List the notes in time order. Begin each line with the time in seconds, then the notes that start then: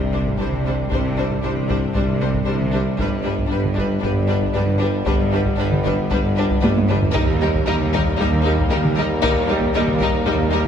Already playing: C2 C3 G3 D4
0.13 G3 D4 C5
0.27 taiko
0.38 C2 C3 G3 D4 C5
0.53 taiko mid
0.66 G3 D4 C5
0.91 C2 C3 G3 D4 C5, taiko
1.17 G3 D4 C5
1.31 taiko
1.42 C2 C3 G3 D4 C5
1.57 taiko mid
1.69 G3 D4 C5, taiko
1.95 C2 C3 G3 D4 C5, taiko
2.21 G3 D4 C5
2.34 taiko
2.47 C2 C3 G3 D4 C5
2.60 taiko mid
2.73 G3 D4 C5
2.98 G1 G2 G3 B3 D4 B4, taiko
3.23 G3 D4 B4
3.38 taiko
3.47 G2 G3 D4
3.51 G1 B4
3.65 taiko mid
3.75 G3 D4 B4, taiko
4.01 G1 G2 G3 D4 B4, taiko
4.27 G3 D4 B4
4.42 taiko
4.54 G1 G2 G3 D4 B4
4.67 taiko mid
4.78 G3 D4 B4
5.05 G1 G2 G3 D4 B4, taiko
5.32 G3 D4 B4
5.46 taiko
5.57 G1 G2 G3 D4 B4
5.72 taiko mid
5.84 G3 D4 B4, taiko
6.10 G1 G2 G3 D4 B4, taiko
6.36 G3 D4 B4
6.51 taiko
6.62 G1 G2 G3 D4 B4, taiko high
6.77 taiko high
6.89 G3 D4 B4, taiko mid
7.03 taiko low
7.13 D#2 G3 A#3 D#4 A#4, taiko
7.41 G3 D#4 A#4
7.55 taiko
7.66 D#2 G3 D#4 A#4
7.81 taiko mid
7.93 G3 D#4 A#4, taiko
8.18 D#2 G3 D#4 A#4, taiko
8.44 G3 D#4 A#4
8.59 taiko
8.70 D#2 G3 D#4 A#4
8.85 taiko mid
8.96 G3 D#4 A#4
9.22 D#2 G3 D#4 A#4, taiko
9.48 G3 D#4 A#4
9.62 taiko
9.73 D#2 G3 D#4 A#4
9.87 taiko mid
10.00 G3 D#4 A#4, taiko
10.26 D#2 G3 D#4 A#4, taiko
10.52 G3 D#4 A#4